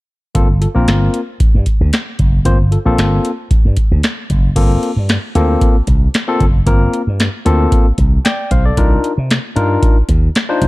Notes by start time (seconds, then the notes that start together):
0.35 G1 A#3 C4 F4 A4, kick, closed hi-hat
0.61 F4 A4, closed hi-hat
0.75 A#1 A#3 C4 F4 A#4
0.88 G1, snare, clap, closed hi-hat
1.14 closed hi-hat
1.40 muted slap bass stroke, kick, closed hi-hat
1.54 G2
1.66 kick, closed hi-hat
1.81 D2
1.93 snare, clap, closed hi-hat
2.19 F#1, kick, closed hi-hat
2.45 G1 A#3 C4 F4 C5, kick, closed hi-hat
2.71 F4 A4, closed hi-hat
2.86 A#1 A#3 C4 F4 A4
2.98 G1, snare, clap, closed hi-hat
3.25 closed hi-hat
3.51 muted slap bass stroke, kick, closed hi-hat
3.65 G2
3.77 kick, closed hi-hat
3.91 D2
4.03 snare, clap, closed hi-hat
4.30 F#1, kick, closed hi-hat
4.56 G1 A#3 C4 F4 A4, kick, closed hi-hat, crash
4.83 closed hi-hat
4.96 G2
5.09 snare, clap, closed hi-hat
5.35 D2 A#3 C4 F4 A4, closed hi-hat
5.61 kick, closed hi-hat
5.87 C2, kick, closed hi-hat
6.14 snare, clap, closed hi-hat
6.28 A#3 C4 F4 A4
6.40 F#1, kick, closed hi-hat
6.66 G1 A#3 C4 F4 A#4, kick, closed hi-hat
6.93 closed hi-hat
7.07 G2
7.20 snare, clap, closed hi-hat
7.45 D2 A#3 C4 F4 A4, closed hi-hat
7.72 kick, closed hi-hat
7.98 C2, kick, closed hi-hat
8.25 D5 G5, snare, clap, closed hi-hat
8.51 B1 C5 F5, kick, closed hi-hat
8.65 A4 D5
8.77 C2 D4 D#4 F4 A#4, kick, closed hi-hat
9.04 closed hi-hat
9.18 C3
9.31 snare, clap, closed hi-hat
9.56 G2 D4 D#4 F4 A#4, closed hi-hat
9.83 kick, closed hi-hat
10.09 D#2, kick, closed hi-hat
10.35 snare, clap, closed hi-hat
10.49 D4 D#4 F4 C5
10.62 B1, kick, closed hi-hat